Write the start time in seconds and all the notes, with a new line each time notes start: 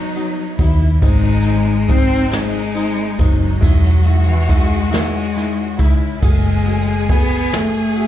Already playing: F#1 F#3 D#4
0.16 F#3 B3 D#4, ride
0.59 D#2 F#3 B3 D#4 E4, kick, ride
1.01 G#1 G#3 C4 D#4, kick, ride
1.45 G#3 C4 D#4, ride
1.88 G#3 C4 D#4, kick, ride
2.31 G#3 C4 D#4, snare, ride
2.35 G#3
2.75 G#3 C4 D#4, ride
3.18 F#1 F#3 G#3 C4 D#4, kick, ride
3.61 E1 G#3 D#4 E4 F#4, kick, ride
4.04 G#3 D#4 E4, ride
4.29 E3
4.48 G#3 D#4 E4, kick, ride
4.90 G#3 D#4 E4, snare, ride
5.35 G#3 D#4 E4, snare, ride
5.78 C#2 G#3 D#4 E4, kick, ride
6.21 F#1 G#3 A3 F#4 G#4, kick, ride
6.66 A3 F#4 G#4, ride
7.09 A3 B3 F#4 G#4, kick, ride
7.52 A3 F#4 G#4, snare, ride
7.95 A3 F#4 G#4, ride